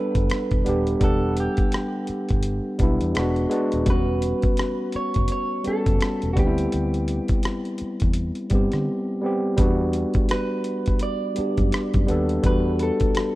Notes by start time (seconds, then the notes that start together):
Already playing: G3 B3 D4 A4 B4 F#5
0.15 F#1, kick, closed hi-hat
0.30 cross-stick, closed hi-hat
0.51 E1, kick, closed hi-hat
0.64 D#1 G3 B3 D4, closed hi-hat
0.69 G4
0.87 closed hi-hat
1.00 E1 G3 B3 D4, kick, closed hi-hat
1.04 A4 F#5
1.37 G4, closed hi-hat
1.57 muted fingered electric bass stroke, kick, closed hi-hat
1.72 cross-stick, closed hi-hat
2.07 muted fingered electric bass stroke, closed hi-hat
2.29 G1, kick, closed hi-hat
2.43 closed hi-hat
2.79 B1 G3 B3 D4, kick, closed hi-hat
2.83 E4
3.01 E2, closed hi-hat
3.14 E1 G#3 B3 D4, cross-stick, closed hi-hat
3.19 F#4
3.36 closed hi-hat
3.49 G#3 B3 D4, closed hi-hat
3.54 F#4
3.72 D#1, closed hi-hat
3.85 E1 G3 B3 C#4, kick, closed hi-hat
3.90 F#4 B4
4.22 closed hi-hat
4.42 muted fingered electric bass stroke, kick, closed hi-hat
4.57 cross-stick, closed hi-hat
4.92 C#5, muted fingered electric bass stroke, closed hi-hat
5.14 F#1, kick, closed hi-hat
5.28 closed hi-hat
5.32 C#5
5.64 G3 B3 C#4 A4, muted fingered electric bass stroke, closed hi-hat
5.69 A4
5.86 F#1, kick, closed hi-hat
6.01 cross-stick, closed hi-hat
6.22 E1, closed hi-hat
6.33 G3 B3 F#4, kick, closed hi-hat
6.38 D2 C4 D4 G4
6.47 E4
6.58 closed hi-hat
6.72 D2, closed hi-hat
6.94 closed hi-hat
7.08 closed hi-hat
7.28 muted fingered electric bass stroke, kick, closed hi-hat
7.43 cross-stick, closed hi-hat
7.65 closed hi-hat
7.78 muted fingered electric bass stroke, closed hi-hat
8.00 E2, kick, closed hi-hat
8.14 closed hi-hat
8.35 closed hi-hat
8.50 G2 G3 B3 C4, kick, closed hi-hat
8.55 G4
8.72 D3, cross-stick, closed hi-hat
9.21 G3 B3 C4
9.26 G4
9.57 E2 G3 B3 D4, kick, closed hi-hat
9.62 F#4
9.93 closed hi-hat
10.14 muted fingered electric bass stroke, kick, closed hi-hat
10.29 B4, cross-stick, closed hi-hat
10.64 closed hi-hat
10.86 kick, closed hi-hat
10.99 D5, closed hi-hat
11.35 G3 B3 D4, muted fingered electric bass stroke, closed hi-hat
11.40 G4
11.57 F#2, kick, closed hi-hat
11.72 cross-stick, closed hi-hat
11.94 F#2, kick, closed hi-hat
12.07 D#2 G3 B3 D4, closed hi-hat
12.11 A4
12.29 closed hi-hat
12.43 E2 G3 B3 D4 B4, kick, closed hi-hat
12.48 F#4
12.79 A4, closed hi-hat
13.00 muted fingered electric bass stroke, kick, closed hi-hat
13.15 cross-stick, closed hi-hat